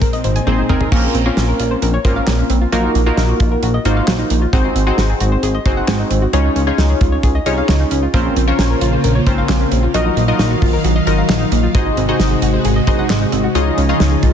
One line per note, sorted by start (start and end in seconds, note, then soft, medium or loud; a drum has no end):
0.00 0.88 A#2 medium
0.00 0.88 G#3 medium
0.00 0.90 C4 medium
0.00 0.07 A#4 loud
0.00 kick loud
0.00 closed hi-hat medium
0.13 0.19 D#5 medium
0.13 closed hi-hat soft
0.24 0.40 G#1 loud
0.24 0.30 C5 medium
0.24 closed hi-hat medium
0.36 0.41 G#5 medium
0.36 closed hi-hat medium
0.47 0.63 G#1 loud
0.47 0.53 A#3 medium
0.47 0.66 C4 medium
0.47 0.66 D#4 medium
0.47 0.66 G#4 medium
0.47 0.66 C5 medium
0.47 high tom medium
0.58 0.64 D#4 medium
0.69 0.85 G#1 medium
0.69 0.75 C4 medium
0.69 0.89 C4 medium
0.69 0.89 D#4 medium
0.69 0.89 G#4 medium
0.69 0.89 A#4 loud
0.69 mid tom medium
0.81 0.86 G#4 medium
0.81 floor tom medium
0.92 1.08 A#1 loud
0.92 1.21 A#3 medium
0.92 0.98 A#3 medium
0.92 1.21 C4 medium
0.92 1.21 C#4 medium
0.92 1.21 F4 medium
0.92 1.21 A#4 loud
0.92 kick loud
0.92 crash loud
1.03 1.09 C#4 medium
1.14 1.30 A#1 loud
1.14 1.20 C4 medium
1.14 closed hi-hat medium
1.26 1.94 A#3 medium
1.26 1.94 C4 medium
1.26 1.94 C#4 medium
1.26 1.94 F4 medium
1.26 1.31 F4 medium
1.26 1.94 A#4 loud
1.37 1.53 A#1 loud
1.37 1.43 C#4 medium
1.37 snare loud
1.37 closed hi-hat medium
1.48 1.54 A#4 medium
1.60 1.75 A#1 loud
1.60 1.65 F4 medium
1.60 closed hi-hat medium
1.71 1.77 C5 medium
1.82 1.98 A#1 loud
1.82 1.88 A#4 loud
1.82 closed hi-hat medium
1.94 1.99 C#5 medium
2.05 2.21 G#1 loud
2.05 2.64 A#3 medium
2.05 2.63 C4 medium
2.05 2.64 C#4 medium
2.05 2.64 F4 medium
2.05 2.64 A#4 loud
2.05 2.10 C5 medium
2.05 kick medium
2.05 closed hi-hat medium
2.16 2.22 F5 medium
2.27 2.43 A#1 loud
2.27 2.33 A#3 medium
2.27 snare loud
2.27 clap medium
2.27 closed hi-hat medium
2.39 2.44 C#4 medium
2.50 2.66 A#1 loud
2.50 2.56 C4 medium
2.50 closed hi-hat medium
2.61 2.67 F4 medium
2.72 2.88 A#1 loud
2.72 2.78 F#3 loud
2.72 3.02 A#3 medium
2.72 3.02 D#4 medium
2.72 3.02 F4 medium
2.72 3.02 F#4 medium
2.72 3.02 A#4 loud
2.72 closed hi-hat medium
2.84 2.89 D#4 medium
2.95 3.11 A#1 loud
2.95 3.01 A#3 medium
2.95 closed hi-hat medium
3.06 3.75 A#3 medium
3.06 3.75 D#4 medium
3.06 3.75 F4 medium
3.06 3.12 F4 medium
3.06 3.75 F#4 medium
3.06 3.75 A#4 loud
3.17 3.33 A#1 loud
3.17 3.23 D#4 medium
3.17 snare loud
3.17 closed hi-hat medium
3.29 3.35 F#4 medium
3.40 3.56 A#1 loud
3.40 3.46 F4 medium
3.40 kick loud
3.40 closed hi-hat medium
3.51 3.57 A#4 medium
3.63 3.78 A#1 loud
3.63 3.68 F#4 loud
3.63 closed hi-hat medium
3.74 3.80 D#5 medium
3.85 4.01 G#1 loud
3.85 4.44 A#3 medium
3.85 4.44 D#4 medium
3.85 4.44 F4 medium
3.85 4.44 F#4 medium
3.85 3.91 A#4 medium
3.85 4.44 C5 loud
3.85 closed hi-hat medium
3.97 4.02 F5 medium
4.08 4.24 A#1 loud
4.08 4.13 F#3 medium
4.08 snare loud
4.08 clap medium
4.08 closed hi-hat medium
4.19 4.25 D#4 medium
4.30 4.46 A#1 loud
4.30 4.36 A#3 medium
4.30 closed hi-hat medium
4.42 4.47 F4 medium
4.53 4.69 G#1 loud
4.53 4.59 G#3 medium
4.53 4.82 C4 medium
4.53 4.82 D#4 medium
4.53 4.82 F#4 medium
4.53 4.82 G#4 medium
4.53 4.82 C5 loud
4.53 kick loud
4.53 closed hi-hat medium
4.64 4.70 D#4 medium
4.75 4.91 G#1 loud
4.75 4.81 C4 medium
4.75 closed hi-hat medium
4.87 5.55 C4 medium
4.87 5.55 D#4 medium
4.87 5.55 F#4 medium
4.87 4.92 F#4 medium
4.87 5.55 G#4 medium
4.87 5.55 C5 loud
4.98 5.14 G#1 loud
4.98 5.04 D#4 medium
4.98 snare loud
4.98 closed hi-hat medium
5.09 5.15 G#4 medium
5.20 5.36 G#1 loud
5.20 5.26 F#4 medium
5.20 closed hi-hat medium
5.32 5.37 C5 medium
5.43 5.59 G#1 loud
5.43 5.49 G#4 loud
5.43 closed hi-hat medium
5.54 5.60 D#5 medium
5.66 5.81 F#1 medium
5.66 6.24 C4 medium
5.66 6.24 D#4 medium
5.66 6.24 F#4 medium
5.66 6.24 G#4 medium
5.66 6.24 C5 loud
5.66 5.71 C5 medium
5.66 kick medium
5.66 closed hi-hat medium
5.77 5.83 F#5 medium
5.88 6.04 G#1 loud
5.88 5.94 G#3 medium
5.88 snare loud
5.88 clap medium
5.88 closed hi-hat medium
6.00 6.05 D#4 medium
6.11 6.27 G#1 loud
6.11 6.16 C4 medium
6.11 closed hi-hat medium
6.22 6.28 F#4 medium
6.33 6.49 C#2 loud
6.33 6.39 G#3 medium
6.33 6.63 C#4 medium
6.33 6.63 D#4 medium
6.33 6.63 F4 medium
6.33 6.63 G#4 medium
6.33 6.63 C#5 loud
6.33 closed hi-hat medium
6.45 6.50 D#4 medium
6.56 6.72 C#2 loud
6.56 6.62 C#4 medium
6.56 closed hi-hat medium
6.67 7.36 C#4 medium
6.67 7.36 D#4 medium
6.67 7.36 F4 medium
6.67 6.73 F4 medium
6.67 7.36 G#4 medium
6.67 7.36 C#5 loud
6.78 6.94 C#2 loud
6.78 6.84 D#4 medium
6.78 snare loud
6.78 closed hi-hat medium
6.90 6.95 G#4 medium
7.01 7.17 C#2 loud
7.01 7.07 F4 medium
7.01 kick loud
7.01 closed hi-hat medium
7.12 7.18 C#5 medium
7.23 7.39 C#2 loud
7.23 7.29 G#4 loud
7.23 kick loud
7.23 closed hi-hat medium
7.35 7.41 D#5 medium
7.46 7.62 C2 medium
7.46 8.05 C#4 medium
7.46 8.05 D#4 medium
7.46 8.05 F4 medium
7.46 8.05 G#4 medium
7.46 8.05 C#5 loud
7.46 7.52 C#5 medium
7.46 closed hi-hat medium
7.57 7.63 F5 medium
7.69 7.84 C#2 loud
7.69 7.74 G#3 medium
7.69 snare loud
7.69 clap medium
7.69 closed hi-hat medium
7.80 7.86 D#4 medium
7.91 8.07 C#2 loud
7.91 7.97 C#4 medium
7.91 closed hi-hat medium
8.03 8.08 F4 medium
8.14 8.30 A#1 loud
8.14 9.92 C#3 medium
8.14 9.92 A#3 medium
8.14 8.19 A#3 medium
8.14 8.43 C4 medium
8.14 8.43 C#4 medium
8.14 9.92 F4 medium
8.14 8.43 F4 medium
8.14 8.43 A#4 medium
8.14 8.43 C5 loud
8.14 kick loud
8.14 closed hi-hat medium
8.25 8.31 C#4 medium
8.36 8.52 A#1 loud
8.36 8.42 C4 medium
8.36 closed hi-hat medium
8.47 9.16 C#4 medium
8.47 9.16 F4 medium
8.47 8.53 F4 medium
8.47 9.16 A#4 medium
8.47 9.16 C5 medium
8.47 9.16 C#5 loud
8.59 8.75 A#1 loud
8.59 8.65 C#4 medium
8.59 snare loud
8.59 closed hi-hat medium
8.70 8.76 A#4 medium
8.81 8.97 A#1 loud
8.81 8.87 F4 medium
8.81 closed hi-hat medium
8.93 8.98 C5 medium
9.04 9.20 A#1 loud
9.04 9.10 A#4 loud
9.04 closed hi-hat medium
9.15 9.21 C#5 medium
9.27 9.42 G#1 loud
9.27 9.85 C4 medium
9.27 9.85 C#4 medium
9.27 9.85 F4 medium
9.27 9.85 A#4 medium
9.27 9.32 C5 medium
9.27 9.85 C5 loud
9.27 kick medium
9.27 closed hi-hat medium
9.38 9.44 F5 medium
9.49 9.65 A#1 loud
9.49 9.55 A#3 medium
9.49 snare loud
9.49 clap medium
9.49 closed hi-hat medium
9.60 9.66 C#4 medium
9.72 9.87 A#1 loud
9.72 9.77 C4 medium
9.72 closed hi-hat medium
9.83 9.89 F4 medium
9.94 10.10 A#1 loud
9.94 11.73 D#3 medium
9.94 11.73 F#3 medium
9.94 10.00 F#3 medium
9.94 10.24 D#4 medium
9.94 10.24 F4 medium
9.94 10.24 F#4 medium
9.94 10.24 A#4 medium
9.94 10.24 D#5 loud
9.94 11.73 F5 medium
9.94 closed hi-hat medium
10.05 10.11 D#4 medium
10.17 10.33 A#1 loud
10.17 10.22 A#3 medium
10.17 closed hi-hat medium
10.28 10.97 D#4 medium
10.28 10.34 F4 medium
10.28 10.97 F4 medium
10.28 10.97 F#4 medium
10.28 10.97 A#4 medium
10.28 10.97 D#5 loud
10.39 10.55 A#1 loud
10.39 10.45 D#4 medium
10.39 snare loud
10.39 closed hi-hat medium
10.51 10.56 F#4 medium
10.62 10.78 A#1 loud
10.62 10.67 F4 medium
10.62 kick loud
10.62 open hi-hat medium
10.73 10.79 A#4 medium
10.84 11.00 A#1 loud
10.84 10.90 F#4 loud
10.84 closed hi-hat medium
10.96 11.01 D#5 medium
11.07 11.23 G#1 loud
11.07 11.66 D#4 medium
11.07 11.66 F4 medium
11.07 11.66 F#4 medium
11.07 11.13 A#4 medium
11.07 11.66 A#4 medium
11.07 11.66 D#5 loud
11.07 closed hi-hat medium
11.18 11.24 F5 medium
11.29 11.45 A#1 loud
11.29 11.35 F#3 medium
11.29 snare loud
11.29 clap medium
11.29 closed hi-hat medium
11.41 11.46 D#4 medium
11.52 11.68 A#1 loud
11.52 11.58 A#3 medium
11.52 closed hi-hat medium
11.63 11.69 F4 medium
11.74 11.90 G#1 loud
11.74 13.53 C3 medium
11.74 11.80 G#3 medium
11.74 13.53 G#3 medium
11.74 12.04 D#4 medium
11.74 12.04 F#4 medium
11.74 13.53 F#4 medium
11.74 12.04 G#4 medium
11.74 12.04 C5 medium
11.74 12.04 D#5 loud
11.74 kick loud
11.74 closed hi-hat medium
11.86 11.92 D#4 medium
11.97 12.13 G#1 loud
11.97 12.03 C4 medium
11.97 closed hi-hat medium
12.08 12.77 D#4 medium
12.08 12.14 F#4 medium
12.08 12.77 F#4 medium
12.08 12.77 G#4 medium
12.08 12.77 C5 medium
12.08 12.77 D#5 loud
12.20 12.36 G#1 loud
12.20 12.25 D#4 medium
12.20 snare loud
12.20 closed hi-hat medium
12.31 12.37 G#4 medium
12.42 12.58 G#1 loud
12.42 12.48 F#4 medium
12.42 closed hi-hat medium
12.53 12.59 C5 medium
12.65 12.81 G#1 loud
12.65 12.70 G#4 loud
12.65 closed hi-hat medium
12.76 12.82 D#5 medium
12.87 13.03 F#1 loud
12.87 13.46 D#4 medium
12.87 13.46 F#4 medium
12.87 13.46 G#4 medium
12.87 12.93 C5 medium
12.87 13.46 C5 medium
12.87 13.46 D#5 loud
12.87 kick medium
12.87 closed hi-hat medium
12.99 13.04 F#5 medium
13.10 13.26 G#1 loud
13.10 13.16 G#3 medium
13.10 snare loud
13.10 clap medium
13.10 closed hi-hat medium
13.21 13.27 D#4 medium
13.32 13.48 G#1 loud
13.32 13.38 C4 medium
13.32 closed hi-hat medium
13.44 13.49 F#4 medium
13.55 13.71 C#2 loud
13.55 14.33 C#3 medium
13.55 14.33 F3 medium
13.55 13.61 G#3 medium
13.55 14.33 D#4 medium
13.55 13.85 D#4 medium
13.55 13.85 F4 medium
13.55 13.85 G#4 medium
13.55 13.85 C#5 medium
13.55 13.85 D#5 loud
13.55 closed hi-hat medium
13.66 13.72 D#4 medium
13.78 13.93 C#2 loud
13.78 13.83 C#4 medium
13.78 closed hi-hat medium
13.89 14.33 D#4 medium
13.89 13.95 F4 medium
13.89 14.33 F4 medium
13.89 14.33 G#4 medium
13.89 14.33 C#5 medium
13.89 14.33 D#5 loud
14.00 14.16 C#2 loud
14.00 14.06 D#4 medium
14.00 snare loud
14.00 closed hi-hat medium
14.12 14.17 G#4 medium
14.23 14.33 C#2 loud
14.23 14.28 F4 medium
14.23 kick loud
14.23 closed hi-hat medium